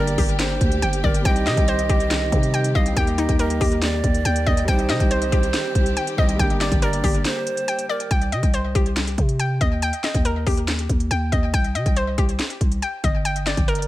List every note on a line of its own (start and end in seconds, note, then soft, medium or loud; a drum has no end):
0.00 0.17 G1 loud
0.00 1.23 D3 medium
0.00 1.20 G3 medium
0.00 4.64 G3 medium
0.00 1.21 A#3 medium
0.00 1.23 A#3 medium
0.00 1.22 D4 medium
0.00 1.24 G4 medium
0.00 4.64 G4 medium
0.00 1.25 A#4 loud
0.00 0.37 D5 medium
0.00 1.03 D5 medium
0.00 0.81 G5 loud
0.07 closed hi-hat medium
0.18 0.59 G1 loud
0.18 1.25 G4 medium
0.18 kick loud
0.18 open hi-hat medium
0.29 closed hi-hat medium
0.39 1.00 C5 medium
0.39 snare loud
0.39 clap loud
0.39 closed hi-hat medium
0.61 0.81 D2 loud
0.61 kick medium
0.61 closed hi-hat medium
0.72 closed hi-hat medium
0.82 1.03 G1 loud
0.82 1.24 G5 loud
0.82 closed hi-hat medium
0.93 closed hi-hat medium
1.04 1.24 G1 loud
1.04 1.24 A#4 medium
1.04 1.25 D5 loud
1.04 kick medium
1.14 closed hi-hat medium
1.22 1.48 C2 loud
1.22 2.95 D#3 medium
1.22 2.29 G3 medium
1.22 2.30 C4 medium
1.22 2.95 C4 medium
1.22 2.71 D#5 loud
1.22 2.53 G5 loud
1.22 kick loud
1.22 closed hi-hat medium
1.27 2.31 D#4 medium
1.27 2.32 G4 medium
1.36 closed hi-hat medium
1.47 1.57 C3 loud
1.47 2.74 D#5 medium
1.47 snare medium
1.47 clap medium
1.47 closed hi-hat medium
1.57 1.88 C2 loud
1.57 kick loud
1.57 closed hi-hat medium
1.68 2.97 C5 medium
1.68 closed hi-hat medium
1.79 closed hi-hat medium
1.89 2.31 C2 loud
1.89 2.97 G4 medium
1.89 kick loud
1.89 closed hi-hat medium
2.00 closed hi-hat medium
2.11 snare loud
2.11 clap loud
2.11 closed hi-hat medium
2.31 2.73 C3 loud
2.31 2.91 G3 medium
2.31 2.97 C4 medium
2.31 2.96 D#4 medium
2.31 2.98 G4 medium
2.31 kick loud
2.31 closed hi-hat medium
2.43 closed hi-hat medium
2.54 2.96 G5 loud
2.54 closed hi-hat medium
2.64 closed hi-hat medium
2.75 2.96 C2 loud
2.75 2.97 D#5 loud
2.75 2.96 F5 medium
2.75 kick medium
2.86 closed hi-hat medium
2.93 3.27 D#2 loud
2.93 6.36 D#3 medium
2.93 4.63 G3 medium
2.93 4.64 A#3 medium
2.93 4.66 A#3 medium
2.93 4.24 G5 loud
2.93 kick loud
2.93 closed hi-hat medium
2.98 4.65 D#4 medium
2.98 4.66 G4 loud
3.07 closed hi-hat medium
3.18 4.47 D#4 medium
3.18 3.38 D#5 medium
3.18 closed hi-hat medium
3.29 3.60 D#2 loud
3.29 kick loud
3.29 closed hi-hat medium
3.39 4.68 A#4 medium
3.39 3.80 D#5 medium
3.39 closed hi-hat medium
3.50 closed hi-hat medium
3.61 4.02 D#2 loud
3.61 4.68 G4 medium
3.61 kick loud
3.61 open hi-hat medium
3.72 closed hi-hat medium
3.82 4.64 D5 loud
3.82 snare loud
3.82 clap loud
3.82 closed hi-hat medium
4.04 4.24 D#2 loud
4.04 kick medium
4.04 closed hi-hat medium
4.14 closed hi-hat medium
4.25 4.46 D#2 loud
4.25 4.67 G5 loud
4.25 closed hi-hat medium
4.36 closed hi-hat medium
4.46 4.67 D#2 loud
4.46 4.68 D#5 loud
4.46 kick loud
4.57 closed hi-hat medium
4.65 4.91 C2 loud
4.65 6.13 G3 medium
4.65 8.07 G3 medium
4.65 6.15 C4 medium
4.65 6.38 C4 medium
4.65 8.07 G4 medium
4.65 6.14 C5 loud
4.65 5.96 G5 loud
4.65 kick loud
4.65 closed hi-hat medium
4.70 6.16 D#4 medium
4.70 6.17 G4 medium
4.79 closed hi-hat medium
4.89 5.00 C3 loud
4.89 6.17 D#5 loud
4.89 snare loud
4.89 clap medium
4.89 closed hi-hat medium
5.00 5.31 C2 loud
5.00 kick loud
5.00 closed hi-hat medium
5.11 6.39 C5 medium
5.11 closed hi-hat medium
5.22 closed hi-hat medium
5.32 5.53 C2 loud
5.32 6.39 G4 medium
5.32 kick loud
5.32 closed hi-hat medium
5.43 closed hi-hat medium
5.54 snare loud
5.54 clap loud
5.54 closed hi-hat medium
5.75 5.96 C2 loud
5.75 kick loud
5.75 closed hi-hat medium
5.86 closed hi-hat medium
5.97 6.38 G5 loud
5.97 closed hi-hat medium
6.07 closed hi-hat medium
6.16 6.39 C2 loud
6.16 6.34 G3 medium
6.16 6.39 C4 medium
6.16 6.40 D#4 soft
6.16 6.40 G4 medium
6.16 6.38 D#5 medium
6.16 6.40 D#5 medium
6.16 kick medium
6.29 closed hi-hat medium
6.36 6.70 G1 loud
6.36 8.09 D3 medium
6.36 8.05 G3 medium
6.36 8.07 A#3 medium
6.36 8.09 A#3 medium
6.36 7.67 G5 loud
6.36 kick loud
6.36 closed hi-hat medium
6.41 8.08 D4 medium
6.41 8.09 G4 medium
6.50 closed hi-hat medium
6.61 7.88 D5 medium
6.61 6.81 D5 medium
6.61 snare loud
6.61 clap medium
6.61 closed hi-hat medium
6.72 7.02 G1 loud
6.72 kick loud
6.72 closed hi-hat medium
6.82 8.11 A#4 medium
6.82 7.23 D5 medium
6.82 closed hi-hat medium
6.93 closed hi-hat medium
7.04 7.24 G1 loud
7.04 8.11 G4 medium
7.04 kick loud
7.04 open hi-hat medium
7.14 closed hi-hat medium
7.25 7.86 C5 loud
7.25 snare loud
7.25 clap loud
7.25 closed hi-hat medium
7.47 closed hi-hat medium
7.57 closed hi-hat medium
7.68 8.10 G5 loud
7.68 closed hi-hat medium
7.79 closed hi-hat medium
7.89 8.10 A#4 medium
7.89 8.11 D5 medium
8.00 closed hi-hat medium
8.11 8.34 C2 loud
8.11 9.38 G5 loud
8.11 kick loud
8.11 closed hi-hat medium
8.22 closed hi-hat medium
8.32 8.42 C3 loud
8.32 9.60 D#5 medium
8.32 closed hi-hat medium
8.43 8.74 C2 loud
8.43 kick loud
8.43 closed hi-hat medium
8.54 9.82 C5 medium
8.54 closed hi-hat medium
8.75 9.16 C2 loud
8.75 9.82 G4 medium
8.75 kick loud
8.75 closed hi-hat medium
8.86 closed hi-hat medium
8.96 snare loud
8.96 clap medium
8.96 closed hi-hat medium
9.07 closed hi-hat medium
9.18 9.59 C3 loud
9.18 kick medium
9.18 closed hi-hat medium
9.29 closed hi-hat medium
9.39 9.81 G5 medium
9.39 closed hi-hat medium
9.61 9.92 D#2 loud
9.61 9.82 D#5 loud
9.61 kick medium
9.61 closed hi-hat medium
9.82 11.10 G5 loud
9.82 closed hi-hat medium
9.93 closed hi-hat medium
10.04 11.31 D#5 medium
10.04 snare loud
10.04 clap medium
10.04 closed hi-hat medium
10.14 10.45 D#2 loud
10.14 kick loud
10.14 closed hi-hat medium
10.25 11.54 A#4 medium
10.25 closed hi-hat medium
10.47 10.88 D#2 loud
10.47 11.54 G4 medium
10.47 kick loud
10.47 open hi-hat medium
10.57 closed hi-hat medium
10.68 snare loud
10.68 clap medium
10.68 closed hi-hat medium
10.79 closed hi-hat medium
10.89 11.10 D#2 loud
10.89 kick medium
10.89 closed hi-hat medium
11.00 closed hi-hat medium
11.11 11.31 D#2 loud
11.11 11.53 G5 loud
11.11 closed hi-hat medium
11.32 11.53 D#2 loud
11.32 11.54 D#5 medium
11.32 kick medium
11.32 closed hi-hat medium
11.54 11.77 C2 loud
11.54 12.81 G5 loud
11.54 kick loud
11.54 closed hi-hat medium
11.64 closed hi-hat medium
11.75 11.85 C3 medium
11.75 13.03 D#5 medium
11.75 closed hi-hat medium
11.86 12.17 C2 loud
11.86 kick loud
11.86 closed hi-hat medium
11.96 13.25 C5 medium
11.96 closed hi-hat medium
12.18 12.39 C2 loud
12.18 13.25 G4 medium
12.18 kick loud
12.18 closed hi-hat medium
12.29 closed hi-hat medium
12.39 snare loud
12.39 clap medium
12.39 closed hi-hat medium
12.50 closed hi-hat medium
12.61 12.81 C2 loud
12.61 kick medium
12.61 closed hi-hat medium
12.72 closed hi-hat medium
12.82 13.24 G5 medium
12.82 closed hi-hat medium
13.04 13.55 G1 loud
13.04 13.25 D#5 medium
13.04 kick medium
13.04 closed hi-hat medium
13.25 13.88 G5 loud
13.25 closed hi-hat medium
13.36 closed hi-hat medium
13.46 13.88 D5 medium
13.46 snare medium
13.46 clap medium
13.46 closed hi-hat medium
13.57 13.88 G1 loud
13.57 kick loud
13.57 closed hi-hat medium
13.68 13.88 A#4 medium
13.68 closed hi-hat medium
13.75 closed hi-hat medium
13.82 closed hi-hat medium